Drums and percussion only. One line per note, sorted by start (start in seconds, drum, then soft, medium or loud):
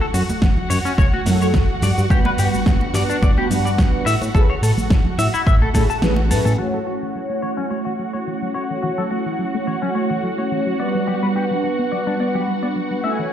0.14 open hi-hat loud
0.14 shaker medium
0.30 muted conga medium
0.30 high conga medium
0.30 shaker soft
0.42 kick loud
0.42 snare loud
0.42 shaker soft
0.57 low conga medium
0.70 open hi-hat loud
0.70 shaker medium
0.85 muted conga medium
0.85 shaker soft
0.98 kick loud
0.98 shaker soft
1.13 high conga medium
1.26 snare medium
1.26 open hi-hat loud
1.26 muted conga medium
1.26 shaker medium
1.42 shaker soft
1.54 kick loud
1.54 snare loud
1.54 shaker soft
1.82 open hi-hat loud
1.82 muted conga soft
1.82 low conga medium
1.82 shaker medium
1.98 shaker soft
2.10 kick loud
2.10 shaker soft
2.25 muted conga medium
2.38 open hi-hat medium
2.38 shaker medium
2.53 high conga medium
2.53 shaker soft
2.66 kick loud
2.66 snare loud
2.66 shaker soft
2.81 muted conga medium
2.94 snare medium
2.94 open hi-hat loud
2.94 shaker medium
3.10 shaker soft
3.23 kick loud
3.23 muted conga medium
3.23 shaker soft
3.38 high conga medium
3.50 open hi-hat medium
3.50 low conga medium
3.50 shaker medium
3.67 shaker soft
3.78 kick loud
3.78 snare loud
3.78 muted conga medium
3.78 shaker soft
4.07 open hi-hat loud
4.07 shaker medium
4.22 muted conga medium
4.22 shaker soft
4.35 kick loud
4.35 shaker soft
4.63 open hi-hat loud
4.63 shaker medium
4.77 muted conga medium
4.77 high conga medium
4.77 low conga medium
4.77 shaker soft
4.90 kick loud
4.90 snare loud
4.90 shaker soft
5.05 low conga medium
5.19 open hi-hat loud
5.19 muted conga medium
5.19 shaker medium
5.34 shaker soft
5.47 kick loud
5.47 shaker soft
5.61 high conga medium
5.74 kick medium
5.74 snare medium
5.74 open hi-hat loud
5.74 muted conga medium
5.74 shaker medium
5.90 shaker soft
6.02 snare loud
6.02 shaker soft
6.16 muted conga medium
6.31 open hi-hat loud
6.31 low conga medium
6.31 shaker medium
6.45 high conga medium
6.45 shaker soft